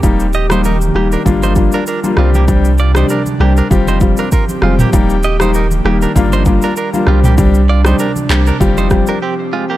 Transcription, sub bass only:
X:1
M:4/4
L:1/8
Q:"Swing 16ths" 1/4=98
K:Eb
V:1 name="Sub bass" clef=bass
E,,,3 E,,, G,,,2 z C,,- | C,,3 C,, F,,,2 z F,,, | E,,,3 E,,, G,,,2 z C,,- | C,,3 C,, F,,,2 z2 |]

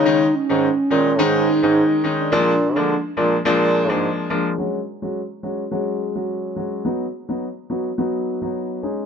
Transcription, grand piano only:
X:1
M:4/4
L:1/16
Q:"Swing 16ths" 1/4=106
K:F#
V:1 name="Grand piano"
[D,G,CD] z2 [D,G,CD] z2 [D,G,CD] z [D,G,CD]3 [D,G,CD]3 [D,G,CD]2 | [E,G,A,=D] z2 [E,G,A,D] z2 [E,G,A,D] z [E,G,A,D]3 [E,G,A,D]3 [E,G,A,D]2 | [F,G,CF] z2 [F,G,CF] z2 [F,G,CF] z [F,G,CF]3 [F,G,CF]3 [F,G,CF]2 | [F,B,DF] z2 [F,B,DF] z2 [F,B,DF] z [F,B,DF]3 [F,B,DF]3 [G,CDG]2 |]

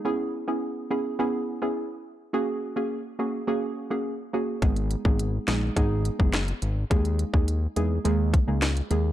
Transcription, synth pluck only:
X:1
M:4/4
L:1/16
Q:1/4=105
K:G#m
V:1 name="Synth pluck"
[B,CEG]3 [B,CEG]3 [B,CEG]2 [B,CEG]3 [B,CEG] z4 | [A,CFG]3 [A,CFG] z2 [A,CFG] z [A,CFG]3 [A,CFG] z2 [A,CFG] z | [G,B,DG]3 [G,B,DG]3 [G,B,DG]2 [G,B,DG]3 [G,B,DG] z4 | [G,A,DG]3 [G,A,DG] z2 [G,A,DG] z [G,A,DG]3 [G,A,DG] z2 [G,A,DG] z |]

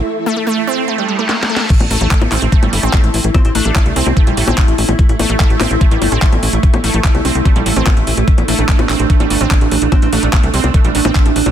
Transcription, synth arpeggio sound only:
X:1
M:4/4
L:1/16
Q:1/4=146
K:Am
V:1 name="Synth arpeggio sound"
z2 A, A, A, z C z A, G, G, A, _B, z A, A, | z2 A, A, A, z C z A, G, A, C A, z3 | z2 A, A, A, z C z A, G, A, C A, z3 | z2 A, A, A, z C z A, G, A, C A, z3 |
z2 A, A, A, z C z A, G, A, C A, z3 | z2 A, A, A, z C z A, G, A, C A, z3 | z2 A, A, A, z C z A, G, A, C A, z3 |]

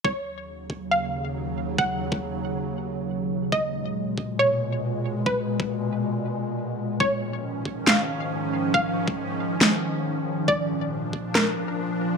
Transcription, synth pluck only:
X:1
M:4/4
L:1/8
Q:"Swing 16ths" 1/4=138
K:Ebm
V:1 name="Synth pluck"
d4 f4 | g4 z4 | e4 d4 | c4 z4 |
d4 f4 | f4 z4 | =d4 B4 |]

